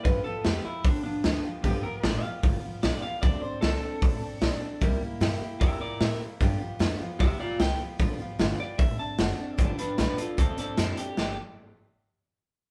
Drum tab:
HH |o-o-o-o-|o-o-o-o-|o-o-o-o-|o-o-o-o-|
SD |--o---o-|--o---o-|--o---o-|--o---o-|
BD |o---o---|o---o---|o---o---|o---o---|

HH |o-o-o-o-|o-o-o-o-|xxxxxxxx|--------|
SD |--o---o-|--o---o-|--o---o-|o-------|
BD |o---o---|o---o---|o---o---|--------|